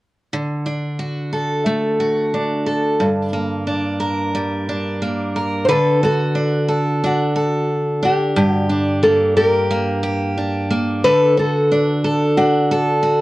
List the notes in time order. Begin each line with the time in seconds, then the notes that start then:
0.33 D3
0.66 D4
0.99 F#4
1.33 A4
1.66 A3
2.00 F#4
2.34 D4
2.66 A4
3.00 G2
3.33 A#3
3.67 D4
4.00 A#4
4.35 G3
4.69 D4
5.02 A#3
5.36 A#4
5.65 D3 B4 C5
5.69 A4
6.03 F#4 A4
6.35 D4
6.68 A4
7.04 D4 F#4
7.36 A4
8.03 D4 G4
8.36 G2 G4
8.48 F#4
8.69 D4
9.03 A#3 A4
9.36 G4 A#4
9.70 A#3
10.03 G4
10.37 D4
10.70 A#3
11.04 D3 A4 B4
11.38 F#4 A4
11.72 D4
12.04 A4
12.37 D4 F#4
12.71 A4
13.03 F#4